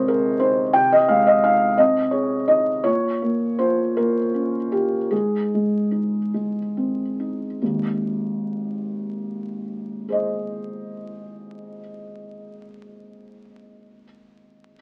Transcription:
felt piano
Already playing: C3 G#3 C4 D#4 A#4 C5 C#5 D#5
0.08 G#4 A#4
0.40 D#4 C5
0.73 C3 G5
0.92 D#5
1.08 G#3 F5
1.27 D#5
1.44 D#4 F5
1.78 C4 D#5
2.11 G#4 C#5
2.48 D#4 D#5
2.84 A#2 C#5
3.22 A#3
3.59 F4 C5
3.97 A#3 A#4
4.34 C#4
4.72 F4 G4
5.11 G#2 G#4
5.54 G#3
5.91 D#4
6.34 G#3
6.77 C4
7.20 D#4
7.62 G#1 D#2
10.08 G#4 C5 D#5

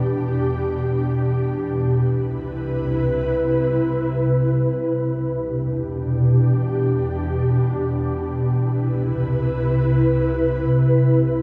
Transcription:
ambient pad
Already playing: E2 B2 D4 G4
1.68 C2 C3 E4 B4
4.94 E2 B2 D4 G4
8.21 C2 C3 E4 B4

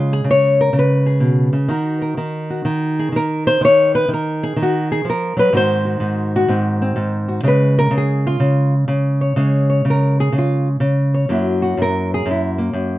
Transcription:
nylon-string guitar
Already playing: C#3 G#3 F4
0.13 G#4
0.24 C#3
0.31 C#5
0.61 A#4
0.73 C#3
0.79 B4
1.06 G#4
1.20 B2
1.53 C#3
1.68 D#3 D#4 F#4 A#4
2.02 A#4
2.17 D#3 A#4
2.50 F#4
2.65 D#3
2.99 G#4
3.12 D#3
3.16 A#4
3.47 C5
3.61 D#3 C#5
3.95 B4
4.08 D#3
4.13 A#4
4.43 G#4
4.56 D#3
4.62 F#4
4.92 G#4
5.05 F3
5.10 A#4
5.37 F#3 B4
5.53 G#2 D#3 C4 F#4
5.57 C5
5.85 F#4
6.00 G#2 F#4
6.36 F#4
6.48 G#2 C4
6.82 C4
6.96 G#2
7.28 F#4
7.43 C#3 G#3 G#4
7.48 B4
7.79 A#4
7.91 C#3
7.97 G#4
8.27 F4
8.40 C#3
8.88 C#3
9.21 C#5
9.36 C#3 G#3 G#4 C#5
9.70 C#5
9.85 C#3
9.90 A#4
10.20 G#4
10.32 C#3
10.38 F4
10.80 C#3
11.14 C#5
11.29 F#2 F#3 A#3 E4 F#4
11.62 F#4
11.77 F#2
11.82 A#4
12.14 G#4
12.26 F#2
12.31 E4
12.58 A#3
12.73 F#2

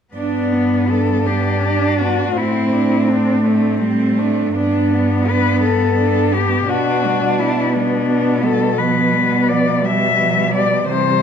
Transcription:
cello
0.14 G2 B3 D4
0.53 B3
0.90 D4 A4
1.26 B3 D4 G4
1.64 D4
2.00 B3 F#4
2.35 A2 C4 E4
2.72 D4
3.09 C4 D4
3.45 A3 C4 D4
3.80 G3 C4
4.18 A3 D4
4.55 G2 B3 D4
4.92 B3
5.28 D4 B4
5.63 B3 A4
5.99 D4
6.33 B3 G4
6.68 B2 B3 D4 F#4
7.05 G3
7.39 B3 E4
7.74 G3 B3 D4
8.10 B3
8.43 G3 A4
8.78 F3 B3 B4
9.12 G3
9.48 F3 D5
9.84 G3 E5
10.19 F3
10.53 G3 D5
10.88 C3 E3 G3 C5

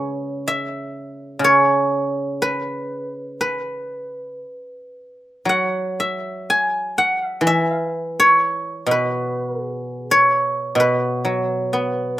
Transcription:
guzheng
Already playing: C#3 G#3 G#4 B4 C#5
0.48 E5
1.39 C#3
1.44 C#5
2.42 B4
3.41 B4
5.45 F#3 F#5
6.00 E5
6.50 G#5
6.98 F#5
7.26 E5
7.41 E3
7.47 E5
8.20 C#5
8.86 B2
8.91 B4
9.67 G#4
10.11 C#5
10.75 B2
10.80 B4
11.25 F#3
11.73 B3

